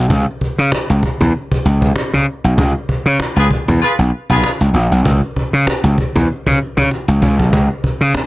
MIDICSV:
0, 0, Header, 1, 5, 480
1, 0, Start_track
1, 0, Tempo, 619195
1, 79, Time_signature, 4, 2, 24, 8
1, 6406, End_track
2, 0, Start_track
2, 0, Title_t, "Horn section"
2, 0, Program_c, 0, 61
2, 2609, Note_on_c, 0, 65, 90
2, 2610, Note_on_c, 0, 68, 98
2, 2613, Note_on_c, 0, 71, 107
2, 2678, Note_off_c, 0, 65, 0
2, 2679, Note_off_c, 0, 68, 0
2, 2680, Note_off_c, 0, 71, 0
2, 2955, Note_on_c, 0, 65, 111
2, 2957, Note_on_c, 0, 68, 90
2, 2957, Note_on_c, 0, 71, 110
2, 3042, Note_off_c, 0, 65, 0
2, 3044, Note_off_c, 0, 68, 0
2, 3044, Note_off_c, 0, 71, 0
2, 3330, Note_on_c, 0, 71, 110
2, 3331, Note_on_c, 0, 65, 92
2, 3333, Note_on_c, 0, 68, 104
2, 3484, Note_off_c, 0, 71, 0
2, 3485, Note_off_c, 0, 65, 0
2, 3486, Note_off_c, 0, 68, 0
2, 6406, End_track
3, 0, Start_track
3, 0, Title_t, "Slap bass"
3, 0, Program_c, 1, 36
3, 79, Note_on_c, 1, 37, 122
3, 192, Note_off_c, 1, 37, 0
3, 453, Note_on_c, 1, 49, 101
3, 542, Note_off_c, 1, 49, 0
3, 696, Note_on_c, 1, 37, 94
3, 784, Note_off_c, 1, 37, 0
3, 934, Note_on_c, 1, 40, 89
3, 1023, Note_off_c, 1, 40, 0
3, 1282, Note_on_c, 1, 37, 81
3, 1482, Note_off_c, 1, 37, 0
3, 1656, Note_on_c, 1, 49, 97
3, 1743, Note_off_c, 1, 49, 0
3, 1894, Note_on_c, 1, 35, 103
3, 1982, Note_off_c, 1, 35, 0
3, 1999, Note_on_c, 1, 37, 127
3, 2112, Note_off_c, 1, 37, 0
3, 2370, Note_on_c, 1, 49, 113
3, 2460, Note_off_c, 1, 49, 0
3, 2608, Note_on_c, 1, 37, 96
3, 2699, Note_off_c, 1, 37, 0
3, 2854, Note_on_c, 1, 40, 91
3, 2942, Note_off_c, 1, 40, 0
3, 3091, Note_on_c, 1, 35, 73
3, 3180, Note_off_c, 1, 35, 0
3, 3330, Note_on_c, 1, 35, 97
3, 3420, Note_off_c, 1, 35, 0
3, 3572, Note_on_c, 1, 37, 103
3, 3661, Note_off_c, 1, 37, 0
3, 3672, Note_on_c, 1, 34, 94
3, 3787, Note_off_c, 1, 34, 0
3, 3810, Note_on_c, 1, 35, 101
3, 3900, Note_off_c, 1, 35, 0
3, 3919, Note_on_c, 1, 37, 116
3, 4031, Note_off_c, 1, 37, 0
3, 4289, Note_on_c, 1, 49, 92
3, 4379, Note_off_c, 1, 49, 0
3, 4524, Note_on_c, 1, 37, 92
3, 4616, Note_off_c, 1, 37, 0
3, 4771, Note_on_c, 1, 40, 101
3, 4860, Note_off_c, 1, 40, 0
3, 5012, Note_on_c, 1, 49, 88
3, 5101, Note_off_c, 1, 49, 0
3, 5248, Note_on_c, 1, 49, 114
3, 5338, Note_off_c, 1, 49, 0
3, 5490, Note_on_c, 1, 37, 110
3, 5579, Note_off_c, 1, 37, 0
3, 5595, Note_on_c, 1, 37, 93
3, 5727, Note_off_c, 1, 37, 0
3, 5727, Note_on_c, 1, 35, 98
3, 5818, Note_off_c, 1, 35, 0
3, 5836, Note_on_c, 1, 37, 122
3, 5949, Note_off_c, 1, 37, 0
3, 6207, Note_on_c, 1, 49, 101
3, 6298, Note_off_c, 1, 49, 0
3, 6406, End_track
4, 0, Start_track
4, 0, Title_t, "Cajon"
4, 78, Note_on_c, 9, 36, 115
4, 155, Note_off_c, 9, 36, 0
4, 211, Note_on_c, 9, 38, 32
4, 288, Note_off_c, 9, 38, 0
4, 320, Note_on_c, 9, 36, 78
4, 398, Note_off_c, 9, 36, 0
4, 452, Note_on_c, 9, 38, 30
4, 529, Note_off_c, 9, 38, 0
4, 557, Note_on_c, 9, 38, 117
4, 635, Note_off_c, 9, 38, 0
4, 798, Note_on_c, 9, 36, 94
4, 801, Note_on_c, 9, 38, 36
4, 875, Note_off_c, 9, 36, 0
4, 878, Note_off_c, 9, 38, 0
4, 935, Note_on_c, 9, 36, 87
4, 1013, Note_off_c, 9, 36, 0
4, 1041, Note_on_c, 9, 38, 55
4, 1118, Note_off_c, 9, 38, 0
4, 1175, Note_on_c, 9, 36, 103
4, 1252, Note_off_c, 9, 36, 0
4, 1283, Note_on_c, 9, 38, 42
4, 1361, Note_off_c, 9, 38, 0
4, 1411, Note_on_c, 9, 36, 92
4, 1413, Note_on_c, 9, 38, 39
4, 1489, Note_off_c, 9, 36, 0
4, 1491, Note_off_c, 9, 38, 0
4, 1517, Note_on_c, 9, 38, 121
4, 1594, Note_off_c, 9, 38, 0
4, 1656, Note_on_c, 9, 36, 73
4, 1657, Note_on_c, 9, 38, 34
4, 1734, Note_off_c, 9, 36, 0
4, 1734, Note_off_c, 9, 38, 0
4, 1999, Note_on_c, 9, 36, 122
4, 2077, Note_off_c, 9, 36, 0
4, 2132, Note_on_c, 9, 38, 31
4, 2209, Note_off_c, 9, 38, 0
4, 2240, Note_on_c, 9, 36, 84
4, 2317, Note_off_c, 9, 36, 0
4, 2372, Note_on_c, 9, 38, 34
4, 2450, Note_off_c, 9, 38, 0
4, 2477, Note_on_c, 9, 38, 121
4, 2555, Note_off_c, 9, 38, 0
4, 2717, Note_on_c, 9, 36, 96
4, 2720, Note_on_c, 9, 38, 35
4, 2795, Note_off_c, 9, 36, 0
4, 2797, Note_off_c, 9, 38, 0
4, 2855, Note_on_c, 9, 36, 76
4, 2933, Note_off_c, 9, 36, 0
4, 2960, Note_on_c, 9, 38, 55
4, 3038, Note_off_c, 9, 38, 0
4, 3206, Note_on_c, 9, 38, 41
4, 3283, Note_off_c, 9, 38, 0
4, 3331, Note_on_c, 9, 36, 88
4, 3408, Note_off_c, 9, 36, 0
4, 3439, Note_on_c, 9, 38, 126
4, 3516, Note_off_c, 9, 38, 0
4, 3681, Note_on_c, 9, 38, 34
4, 3759, Note_off_c, 9, 38, 0
4, 3918, Note_on_c, 9, 36, 126
4, 3995, Note_off_c, 9, 36, 0
4, 4053, Note_on_c, 9, 38, 31
4, 4130, Note_off_c, 9, 38, 0
4, 4158, Note_on_c, 9, 36, 83
4, 4236, Note_off_c, 9, 36, 0
4, 4289, Note_on_c, 9, 38, 33
4, 4367, Note_off_c, 9, 38, 0
4, 4397, Note_on_c, 9, 38, 125
4, 4474, Note_off_c, 9, 38, 0
4, 4635, Note_on_c, 9, 36, 93
4, 4638, Note_on_c, 9, 38, 32
4, 4712, Note_off_c, 9, 36, 0
4, 4715, Note_off_c, 9, 38, 0
4, 4772, Note_on_c, 9, 36, 92
4, 4849, Note_off_c, 9, 36, 0
4, 4878, Note_on_c, 9, 38, 53
4, 4956, Note_off_c, 9, 38, 0
4, 5012, Note_on_c, 9, 36, 94
4, 5089, Note_off_c, 9, 36, 0
4, 5124, Note_on_c, 9, 38, 42
4, 5202, Note_off_c, 9, 38, 0
4, 5249, Note_on_c, 9, 36, 93
4, 5254, Note_on_c, 9, 38, 34
4, 5327, Note_off_c, 9, 36, 0
4, 5332, Note_off_c, 9, 38, 0
4, 5353, Note_on_c, 9, 38, 59
4, 5358, Note_off_c, 9, 38, 0
4, 5358, Note_on_c, 9, 38, 70
4, 5436, Note_off_c, 9, 38, 0
4, 5597, Note_on_c, 9, 36, 96
4, 5675, Note_off_c, 9, 36, 0
4, 5732, Note_on_c, 9, 36, 91
4, 5809, Note_off_c, 9, 36, 0
4, 5836, Note_on_c, 9, 36, 122
4, 5914, Note_off_c, 9, 36, 0
4, 5974, Note_on_c, 9, 38, 30
4, 6051, Note_off_c, 9, 38, 0
4, 6077, Note_on_c, 9, 36, 85
4, 6154, Note_off_c, 9, 36, 0
4, 6209, Note_on_c, 9, 38, 34
4, 6286, Note_off_c, 9, 38, 0
4, 6314, Note_on_c, 9, 38, 109
4, 6392, Note_off_c, 9, 38, 0
4, 6406, End_track
5, 0, Start_track
5, 0, Title_t, "Muted slap bass strokes"
5, 320, Note_on_c, 9, 29, 49
5, 397, Note_off_c, 9, 29, 0
5, 562, Note_on_c, 9, 29, 43
5, 640, Note_off_c, 9, 29, 0
5, 2239, Note_on_c, 9, 29, 52
5, 2317, Note_off_c, 9, 29, 0
5, 2477, Note_on_c, 9, 29, 48
5, 2555, Note_off_c, 9, 29, 0
5, 4159, Note_on_c, 9, 29, 53
5, 4236, Note_off_c, 9, 29, 0
5, 4391, Note_on_c, 9, 29, 46
5, 4468, Note_off_c, 9, 29, 0
5, 6075, Note_on_c, 9, 29, 49
5, 6153, Note_off_c, 9, 29, 0
5, 6314, Note_on_c, 9, 29, 47
5, 6391, Note_off_c, 9, 29, 0
5, 6406, End_track
0, 0, End_of_file